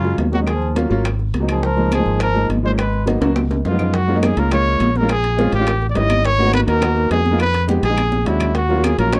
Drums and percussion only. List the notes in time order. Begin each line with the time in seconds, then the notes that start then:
0.04 high bongo, high conga
0.18 high bongo, low bongo, high conga, high timbale, low timbale
0.33 high conga
0.47 high bongo, high conga, high timbale, claves
0.62 high bongo, high conga
0.76 high bongo, high conga, high timbale
0.91 high bongo
1.05 high bongo, high conga, high timbale, claves
1.19 high bongo, high conga
1.34 high bongo, low bongo, high conga, high timbale
1.48 high timbale, claves
1.63 high bongo, high conga
1.77 high bongo, high conga
1.91 high bongo, high conga, high timbale, claves
2.06 high bongo
2.20 high bongo, high conga, high timbale, claves
2.35 high bongo, high conga
2.50 high bongo, low bongo, high conga, high timbale
2.78 high bongo, high conga, high timbale, claves
2.93 high bongo, high conga
3.07 high bongo, high conga, high timbale
3.22 high timbale
3.36 high bongo, high conga, high timbale, claves
3.51 high bongo, high conga, high timbale
3.65 high bongo, low bongo, low conga, low timbale
3.79 low conga, low timbale, claves
3.94 high bongo, high conga, high timbale
4.09 high conga
4.23 high bongo, high conga, high timbale, claves
4.37 high bongo, high conga, high timbale
4.51 high bongo, high conga, low conga, high timbale, claves
4.66 high bongo, high conga
4.80 high bongo, low bongo, high conga, high timbale
4.95 high bongo, high conga
5.09 high bongo, high conga, high timbale, claves
5.24 high conga, high timbale
5.39 high bongo, high conga
5.53 high bongo, high timbale
5.67 high bongo, high conga, high timbale, claves
5.82 high bongo, high conga
5.95 high bongo, low bongo, high conga, high timbale, low timbale
6.10 high bongo, high conga, high timbale, claves
6.25 high bongo, high conga, high timbale
6.39 high conga
6.53 high bongo, high conga, high timbale, claves
6.68 high bongo, high conga, high timbale
6.82 high bongo, high conga, low conga, high timbale, claves
6.97 high bongo, high conga
7.11 high bongo, low bongo, high conga, high timbale, low timbale
7.26 high bongo, high conga
7.39 high bongo, high conga, high timbale, claves
7.54 high bongo, high conga, high timbale
7.68 low bongo, high conga
7.83 high bongo, high timbale
7.97 high conga, high timbale, claves
8.12 low bongo, high conga
8.26 low conga, high timbale
8.40 low bongo, low conga, high timbale, claves
8.55 high bongo, high conga, high timbale
8.70 high conga
8.84 high bongo, high conga, high timbale, claves
8.99 high bongo, high conga, high timbale
9.13 high bongo, high conga, low conga, high timbale, claves